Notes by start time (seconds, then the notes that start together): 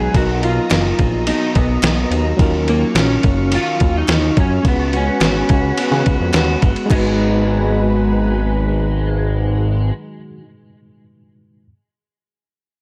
Already playing: F#3 G#3 B3 D#4 G#4 F#5 B5
0.11 B1 B2 F#3 A#3 B3 D4 D#5 A#5, kick, ride
0.16 D#4 F#4 A#4
0.22 D#4
0.42 F#3 A#3 D#4 F4, ride
0.70 F#1 B2 F#3 A#3 D#4, snare, clap, ride
0.98 A#1 F#3 A#3 D#4, kick, ride
1.26 B2 F#3 A#3 D#4, ride
1.54 B1 F#3 A#3 B3 D#4, kick, ride
1.82 B1 B2 F#3 A#3 B3 D#4, snare, clap, ride
2.11 D#2 F#3 A#3 D#4, ride
2.37 D#2 D#3 F#3 C#4 D#4 F4 F5 C#6, kick, ride
2.41 F4 A#4
2.67 F#3 A#3 C#4 F4, ride
2.95 A#1 D#3 F#3 C#4 F4, snare, clap, ride
3.23 F#1 F#3 C#4 F4, kick, ride
3.51 D#3 F#3 C#4 F4, ride
3.55 F4
3.79 D#2 F#3 C#4 F4, kick, ride
3.97 D#4
4.07 D#2 D#3 F#3 C#4 F4, snare, clap, ride
4.35 F#2 F#3 C#4 F4, kick, ride
4.40 C#4
4.63 C#2 C#3 G#3 B3 C#4 F#4 B4 F#5, kick, ride
4.67 B3 B4
4.92 G#3 B3 F#4, ride
4.97 C#4
5.20 G#1 C#3 G#3 B3 F#4, snare, clap, ride
5.48 C#2 G#3 B3 F#4, kick, ride
5.77 C#3 G#3 B3 F#4, ride
5.91 C#3, snare
6.05 C#2 G#3 B3 F#4, kick, ride
6.20 F2
6.33 D#2 C#3 G#3 B3 F#4, snare, clap, ride
6.61 G1 G#3 B3 F#4, kick, ride
6.76 ride
6.86 G#2 D#3 G#3 D#4
6.90 G#1 F#3 G#3 B3 F#4 B4, kick, clap, crash
6.95 D#4 B4